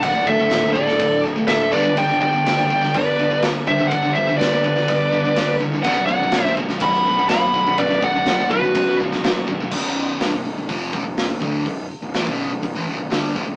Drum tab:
CC |x---x---x---x---|x---x---x---x---|x---x---x---x---|x---x---x---x---|
HH |----------------|----------------|----------------|----------------|
SD |----o--o----o---|----o--o----o---|----o--o----o---|----o--o----o---|
BD |o-o---o-o-----o-|o-o---o-o-----o-|o-o---o-o-----o-|o-o---o-o-----o-|

CC |x---x---x---x---|x---------------|----------------|
HH |----------------|----o---o---o---|o---o---o---o---|
SD |----o------oo---|----o-------o---|----o-------o---|
BD |o-o---o-o-----o-|o-------o-o---o-|o----o--o-----o-|